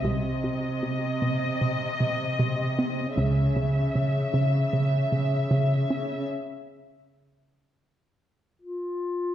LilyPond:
<<
  \new Staff \with { instrumentName = "Violin section" } { \time 4/4 \tempo 4 = 77 ees''1 | e''1 | r1 | }
  \new Staff \with { instrumentName = "Clarinet" } { \time 4/4 r1 | r1 | r2. eis'4 | }
  \new Staff \with { instrumentName = "Analog synth bass" } { \clef bass \time 4/4 c8 c8 c8 c8 c8 c8 c8 c'8 | cis8 cis8 cis8 cis8 cis8 cis8 cis8 cis'8 | r1 | }
  \new Staff \with { instrumentName = "Cello section" } { \clef bass \time 4/4 c1 | cis1 | r1 | }
  \new Staff \with { instrumentName = "Double bass section" } { \clef bass \time 4/4 c,4 r2. | cis,4 r2. | r1 | }
>>